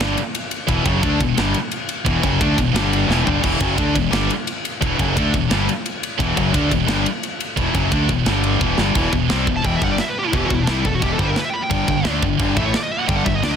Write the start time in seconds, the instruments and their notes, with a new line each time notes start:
0.00 fingered electric bass G1, distorted electric guitar G2 D3 G3, snare, ride
0.18 ride
0.35 ride
0.51 ride
0.67 fingered electric bass E1, distorted electric guitar E2 B2 E3, kick, ride
0.85 fingered electric bass F#1, distorted electric guitar F#2 C#3 F#3, kick, ride
1.03 fingered electric bass D2, distorted electric guitar D3 A3 D4, kick, ride
1.20 fingered electric bass E1, distorted electric guitar E2 B2, kick, ride
1.37 fingered electric bass G1, distorted electric guitar G2 D3 G3, snare, ride
1.54 ride
1.72 ride
1.89 ride
2.06 fingered electric bass E1, distorted electric guitar E2 B2 E3, kick, ride
2.23 fingered electric bass F#1, distorted electric guitar F#2 C#3 F#3, kick, ride
2.40 fingered electric bass D2, distorted electric guitar D3 A3 D4, kick, ride
2.57 fingered electric bass E1, distorted electric guitar E2 B2, kick, ride
2.73 fingered electric bass G1, distorted electric guitar G2 D3 G3, snare, ride
2.93 ride
3.07 fingered electric bass E1, distorted electric guitar E2 B2 E3, snare
3.25 fingered electric bass G1, distorted electric guitar G2 D3 G3, floor tom
3.42 fingered electric bass E1, distorted electric guitar E2 B2 E3, kick, crash
3.60 fingered electric bass F#1, distorted electric guitar F#2 C#3 F#3, kick, ride
3.76 fingered electric bass D2, distorted electric guitar D3 A3 D4, kick, ride
3.95 fingered electric bass E1, distorted electric guitar E2 B2, kick, ride
4.10 fingered electric bass G1, distorted electric guitar G2 D3 G3, snare, ride
4.30 ride
4.47 ride
4.65 ride
4.81 fingered electric bass E1, distorted electric guitar E2 B2 E3, kick, ride
4.99 fingered electric bass F#1, distorted electric guitar F#2 C#3 F#3, kick, ride
5.16 fingered electric bass D2, distorted electric guitar D3 A3 D4, kick, ride
5.34 fingered electric bass E1, distorted electric guitar E2 B2, kick, ride
5.50 fingered electric bass G1, distorted electric guitar G2 D3 G3, snare, ride
5.69 ride
5.86 ride
6.03 ride
6.19 fingered electric bass E1, distorted electric guitar E2 B2 E3, kick, ride
6.36 fingered electric bass F#1, distorted electric guitar F#2 C#3 F#3, kick, ride
6.53 fingered electric bass D2, distorted electric guitar D3 A3 D4, kick, ride
6.69 fingered electric bass E1, distorted electric guitar E2 B2, kick, ride
6.86 fingered electric bass G1, distorted electric guitar G2 D3 G3, snare, ride
7.06 ride
7.23 ride
7.40 ride
7.57 fingered electric bass E1, distorted electric guitar E2 B2 E3, kick, ride
7.74 fingered electric bass F#1, distorted electric guitar F#2 C#3 F#3, kick, ride
7.92 fingered electric bass D2, distorted electric guitar D3 A3 D4, kick, ride
8.09 fingered electric bass E1, distorted electric guitar E2 B2, kick, ride
8.26 fingered electric bass G1, distorted electric guitar G2 D3 G3, snare, ride
8.44 ride
8.61 fingered electric bass E1, distorted electric guitar E2 B2 E3, kick
8.78 fingered electric bass G1, distorted electric guitar G2 D3 G3, snare
8.95 fingered electric bass E1, distorted electric guitar E2 B2 E3, kick, crash
9.12 fingered electric bass E1, distorted electric guitar E2 B2, kick
9.29 fingered electric bass C2, distorted electric guitar C3 G3 C4, snare, crash
9.47 fingered electric bass E1, distorted electric guitar E2 B2, kick
9.56 lead electric guitar A5
9.64 fingered electric bass E1, distorted electric guitar E2 B2 E3, lead electric guitar G5, kick, crash
9.76 lead electric guitar E5
9.82 fingered electric bass G1, distorted electric guitar G2 D3 G3, lead electric guitar F#5, kick
9.91 lead electric guitar D5
9.98 lead electric guitar E5, snare, crash
10.08 lead electric guitar B4
10.19 lead electric guitar G4
10.27 lead electric guitar E4
10.33 fingered electric bass E1, distorted electric guitar E2 B2 E3, lead electric guitar G4, kick, crash
10.47 fingered electric bass E1, lead electric guitar F#4, kick
10.51 distorted electric guitar E2 B2, lead electric guitar E4
10.61 lead electric guitar D4
10.67 fingered electric bass C2, distorted electric guitar C3 G3 C4, lead electric guitar E4, snare, crash
10.85 fingered electric bass E1, distorted electric guitar E2 B2, lead electric guitar A4, kick
10.95 lead electric guitar F#4
11.02 fingered electric bass E1, distorted electric guitar E2 B2 E3, lead electric guitar G4, kick, crash
11.12 lead electric guitar A4
11.19 fingered electric bass G1, distorted electric guitar G2 D3 G3, lead electric guitar C5, kick
11.30 lead electric guitar A#4
11.36 lead electric guitar B4, snare, crash
11.45 lead electric guitar E5
11.50 lead electric guitar G5 B5
11.62 lead electric guitar G5
11.70 fingered electric bass G1, distorted electric guitar G2 D3 G3, kick, crash
11.88 fingered electric bass G1, distorted electric guitar G2 D3, kick
12.04 fingered electric bass D2, distorted electric guitar D3 A3 D4, snare, crash
12.22 fingered electric bass G1, distorted electric guitar G2 D3, kick
12.39 fingered electric bass G1, distorted electric guitar G2 D3 G3, kick, crash
12.57 fingered electric bass A1, distorted electric guitar A2 E3 A3, lead electric guitar E5, kick
12.65 lead electric guitar C#5
12.74 lead electric guitar D5, snare, crash
12.83 lead electric guitar D#5
12.92 lead electric guitar E5
12.99 lead electric guitar F#5
13.08 fingered electric bass G1, distorted electric guitar G2 D3 G3, lead electric guitar G5, kick, crash
13.17 lead electric guitar F#5
13.25 fingered electric bass G1, distorted electric guitar G2 D3, lead electric guitar E5, kick
13.35 lead electric guitar D#5
13.43 fingered electric bass D2, distorted electric guitar D3 A3 D4, lead electric guitar D5, snare, crash
13.52 lead electric guitar D#5